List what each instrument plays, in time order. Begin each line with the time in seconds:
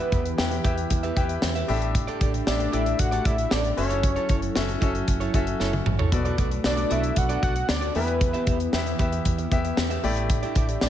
Already playing: grand piano E3 E4 G4 B4 G5, analog synth pad E3 B3 G4, analog synth lead B4
0.00 clean electric guitar G4 B4 E5
0.12 fretless electric bass E2, clean electric guitar G4 B4 E5, kick, closed hi-hat
0.25 muted clean electric guitar stroke, closed hi-hat
0.37 fretless electric bass E2, grand piano E4 G4 B4 G5, muted clean electric guitar stroke, snare
0.51 muted clean electric guitar stroke, closed hi-hat
0.64 fretless electric bass E2, grand piano E4 G4 B4 G5, clean electric guitar G4 B4 E5, kick, closed hi-hat
0.77 muted clean electric guitar stroke, closed hi-hat
0.90 fretless electric bass E2, muted clean electric guitar stroke, kick, closed hi-hat
1.03 clean electric guitar G4 B4 E5, closed hi-hat
1.16 fretless electric bass E2, grand piano E4 G4 B4 G5, clean electric guitar G4 B4 E5, kick, closed hi-hat
1.29 muted clean electric guitar stroke, closed hi-hat
1.42 fretless electric bass E2, muted clean electric guitar stroke, snare
1.55 clean electric guitar G4 B4 E5, closed hi-hat
1.68 fretless electric bass A1, grand piano A2 D4 G4 A4 E5, analog synth pad A3 D4, muted clean electric guitar stroke, open hi-hat
1.82 muted clean electric guitar stroke, closed hi-hat
1.95 muted clean electric guitar stroke, kick, closed hi-hat
2.07 clean electric guitar G4 A4 D5, closed hi-hat
2.21 fretless electric bass A1, clean electric guitar G4 A4 D5, kick, closed hi-hat
2.34 muted clean electric guitar stroke, closed hi-hat
2.47 fretless electric bass A1, grand piano D4 G4 A4 E5, analog synth lead D5, muted clean electric guitar stroke, snare
2.59 muted clean electric guitar stroke, closed hi-hat
2.73 fretless electric bass A1, grand piano D4 G4 A4 D5, clean electric guitar G4 A4 D5, analog synth lead E5, closed hi-hat
2.86 muted clean electric guitar stroke, closed hi-hat
2.99 fretless electric bass A1, analog synth lead F#5, muted clean electric guitar stroke, kick, closed hi-hat
3.11 clean electric guitar G4 A4 D5, closed hi-hat
3.25 fretless electric bass A1, clean electric guitar G4 A4 D5, analog synth lead E5, kick, closed hi-hat
3.38 muted clean electric guitar stroke, closed hi-hat
3.51 fretless electric bass A1, clean electric guitar G4 A4 D5, analog synth lead D5, snare
3.64 muted clean electric guitar stroke, closed hi-hat
3.77 fretless electric bass F#1, analog synth pad F#3 E4 A4, grand piano C#4 F#4 A4 E5, analog synth lead C#5, muted clean electric guitar stroke, open hi-hat
3.90 clean electric guitar E4 A4 C#5, closed hi-hat
4.03 muted clean electric guitar stroke, kick, closed hi-hat
4.16 clean electric guitar E4 A4 C#5, closed hi-hat
4.29 fretless electric bass F#1, clean electric guitar E4 A4 C#5, kick, closed hi-hat
4.42 muted clean electric guitar stroke, closed hi-hat
4.55 fretless electric bass F#1, grand piano C#4 F#4 A4 E5, muted clean electric guitar stroke, snare
4.68 muted clean electric guitar stroke, closed hi-hat
4.81 fretless electric bass F#1, grand piano C#4 F#4 A4 E5, clean electric guitar E4 A4 C#5, kick, closed hi-hat
4.94 muted clean electric guitar stroke, closed hi-hat
5.08 fretless electric bass F#1, muted clean electric guitar stroke, kick, closed hi-hat
5.20 clean electric guitar E4 A4 C#5, closed hi-hat
5.33 fretless electric bass F#1, grand piano C#4 F#4 A4 E5, clean electric guitar E4 A4 C#5, kick, closed hi-hat
5.47 muted clean electric guitar stroke, closed hi-hat
5.60 fretless electric bass F#1, clean electric guitar E4 A4 C#5, snare
5.73 muted clean electric guitar stroke, high tom
5.86 fretless electric bass A1, muted clean electric guitar stroke, mid tom
5.99 clean electric guitar E4 A4 C#5, floor tom
6.12 fretless electric bass B1, grand piano B2 B3 F#4 A4 D5, analog synth pad A3 B3 D4, kick, closed hi-hat
6.25 clean electric guitar F#4 A4 D5, closed hi-hat
6.38 fretless electric bass B1, clean electric guitar F#4 A4 D5, kick, closed hi-hat
6.51 muted clean electric guitar stroke, closed hi-hat
6.64 fretless electric bass B1, grand piano B3 F#4 A4 D5, analog synth lead D5, muted clean electric guitar stroke, snare
6.77 muted clean electric guitar stroke, closed hi-hat
6.90 fretless electric bass B1, grand piano B3 F#4 A4 D5, clean electric guitar F#4 A4 D5, analog synth lead E5, closed hi-hat
7.04 muted clean electric guitar stroke, closed hi-hat
7.16 fretless electric bass B1, analog synth lead F#5, muted clean electric guitar stroke, kick, closed hi-hat
7.29 clean electric guitar F#4 A4 D5, closed hi-hat
7.42 fretless electric bass B1, clean electric guitar F#4 A4 D5, analog synth lead F#5, kick, closed hi-hat
7.56 muted clean electric guitar stroke, closed hi-hat
7.69 fretless electric bass D2, analog synth lead D5, muted clean electric guitar stroke, snare
7.81 clean electric guitar F#4 A4 D5, closed hi-hat
7.94 fretless electric bass E2, analog synth pad E3 B3 G4, grand piano E3 B3 E4 G4 E5, analog synth lead B4, muted clean electric guitar stroke, open hi-hat
8.07 muted clean electric guitar stroke, closed hi-hat
8.21 muted clean electric guitar stroke, kick, closed hi-hat
8.33 clean electric guitar G4 B4 E5, closed hi-hat
8.47 fretless electric bass E2, clean electric guitar G4 B4 E5, kick, closed hi-hat
8.60 muted clean electric guitar stroke, closed hi-hat
8.73 fretless electric bass E2, grand piano B3 E4 G4 E5, muted clean electric guitar stroke, snare
8.86 muted clean electric guitar stroke, closed hi-hat
8.99 fretless electric bass E2, grand piano B3 E4 G4 E5, clean electric guitar G4 B4 E5, kick, closed hi-hat
9.12 muted clean electric guitar stroke, closed hi-hat
9.25 fretless electric bass E2, muted clean electric guitar stroke, kick, closed hi-hat
9.38 muted clean electric guitar stroke, closed hi-hat
9.51 fretless electric bass E2, grand piano B3 E4 G4 E5, kick, closed hi-hat
9.64 muted clean electric guitar stroke, closed hi-hat
9.77 fretless electric bass E2, muted clean electric guitar stroke, snare
9.90 clean electric guitar G4 B4 E5, closed hi-hat
10.03 fretless electric bass A1, grand piano A2 A3 E4 G4 D5, analog synth pad A3 D4, muted clean electric guitar stroke, open hi-hat
10.16 muted clean electric guitar stroke, closed hi-hat
10.30 muted clean electric guitar stroke, kick, closed hi-hat
10.43 clean electric guitar E4 G4 D5, closed hi-hat
10.55 fretless electric bass A1, clean electric guitar E4 G4 D5, kick, closed hi-hat
10.69 muted clean electric guitar stroke, closed hi-hat
10.81 fretless electric bass A1, grand piano A3 E4 G4 D5, analog synth lead D5, muted clean electric guitar stroke, snare